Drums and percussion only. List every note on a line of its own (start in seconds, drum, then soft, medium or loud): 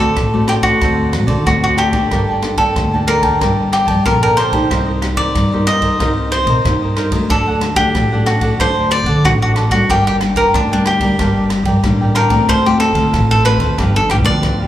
0.16 kick medium
0.16 cross-stick medium
0.16 ride soft
0.48 cross-stick medium
0.48 ride soft
0.63 kick medium
0.63 ride soft
0.81 kick medium
0.81 cross-stick medium
0.81 ride soft
1.13 cross-stick medium
1.13 ride soft
1.28 kick medium
1.28 ride soft
1.46 kick medium
1.46 cross-stick medium
1.46 ride soft
1.78 cross-stick medium
1.78 ride soft
1.93 kick medium
1.93 ride soft
2.11 kick medium
2.11 cross-stick medium
2.11 ride soft
2.42 cross-stick medium
2.42 ride soft
2.57 kick medium
2.57 ride soft
2.76 kick medium
2.76 cross-stick medium
2.76 ride soft
3.07 cross-stick medium
3.07 ride soft
3.23 kick medium
3.23 ride soft
3.41 kick medium
3.41 cross-stick medium
3.41 ride soft
3.73 cross-stick medium
3.73 ride soft
3.87 kick medium
3.87 ride soft
4.06 kick medium
4.06 cross-stick medium
4.06 ride soft
4.38 cross-stick medium
4.38 ride soft
4.52 kick medium
4.52 ride soft
4.71 kick medium
4.71 cross-stick medium
4.71 ride soft
5.02 cross-stick medium
5.02 ride soft
5.17 kick medium
5.17 ride soft
5.35 kick medium
5.35 cross-stick medium
5.35 ride soft
5.67 cross-stick medium
5.67 ride soft
5.82 kick medium
5.82 ride soft
6.00 kick medium
6.00 cross-stick medium
6.00 ride soft
6.32 cross-stick medium
6.32 ride soft
6.47 kick medium
6.47 ride soft
6.65 kick medium
6.65 cross-stick medium
6.65 ride soft
6.96 cross-stick medium
6.96 ride soft
7.11 kick medium
7.11 ride soft
7.30 kick medium
7.30 cross-stick medium
7.30 ride soft
7.61 cross-stick medium
7.61 ride soft
7.76 kick medium
7.76 ride soft
7.95 kick medium
7.95 cross-stick medium
7.95 ride soft
8.26 cross-stick medium
8.26 ride soft
8.41 kick medium
8.41 ride soft
8.60 kick medium
8.60 cross-stick medium
8.60 ride soft
8.91 cross-stick medium
8.91 ride soft
9.06 kick medium
9.06 ride soft
9.25 kick medium
9.25 cross-stick medium
9.25 ride soft
9.56 cross-stick medium
9.56 ride soft
9.71 kick medium
9.71 ride soft
9.89 kick medium
9.89 cross-stick medium
9.89 ride soft
10.21 cross-stick medium
10.21 ride soft
10.36 kick medium
10.36 ride soft
10.54 kick medium
10.54 cross-stick medium
10.54 ride soft
10.85 cross-stick medium
10.85 ride soft
11.00 kick medium
11.00 ride soft
11.19 kick medium
11.19 cross-stick medium
11.19 ride medium
11.50 cross-stick medium
11.50 ride soft
11.65 kick medium
11.65 ride soft
11.83 kick medium
11.83 cross-stick medium
11.83 ride soft
12.15 cross-stick medium
12.15 ride soft
12.30 kick medium
12.30 ride soft
12.49 kick medium
12.49 cross-stick medium
12.49 ride soft
12.80 cross-stick medium
12.80 ride soft
12.95 kick medium
12.95 ride soft
13.13 kick medium
13.13 cross-stick medium
13.13 ride soft
13.45 cross-stick medium
13.45 ride soft
13.60 kick medium
13.60 ride soft
13.78 kick medium
13.78 cross-stick medium
13.78 ride soft
14.09 cross-stick medium
14.09 ride soft
14.24 kick medium
14.24 ride soft
14.43 kick medium
14.43 cross-stick medium
14.43 ride soft